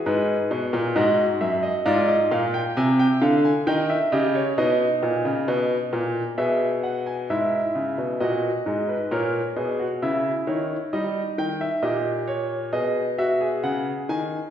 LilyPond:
<<
  \new Staff \with { instrumentName = "Grand piano" } { \time 4/4 \key gis \phrygian \tempo 4 = 66 << { b'4 dis''8 e''16 dis''16 d''16 dis''16 eis''16 g''16 gis''16 g''16 eis''16 gis''16 | g''16 e''16 dis''16 cis''16 dis''2 e''8 fis''16 gis''16 | e''4 dis''4 cis''4 e''8 cis''8 | dis''8 g''16 e''16 dis''8 cis''8 dis''8 e''8 fis''8 gis''8 | } \\ { gis'4 fis'4 eis'2 | dis'8 g'8 dis'2 gis'4 | e'4 fis'8 gis'16 b'16 ais'8 gis'16 fis'16 e'4 | dis'4 g'4 gis'8 fis'16 gis'4~ gis'16 | } >> }
  \new Staff \with { instrumentName = "Grand piano" } { \clef bass \time 4/4 \key gis \phrygian gis,8 b,16 ais,16 gis,8 fis,8 gis,8 ais,8 bis,8 d8 | dis8 cis8 b,8 ais,16 cis16 b,8 ais,8 b,4 | gis,8 cis16 b,16 ais,8 gis,8 ais,8 b,8 cis8 dis8 | g8 dis8 ais,4 b,4 cis8 dis8 | }
>>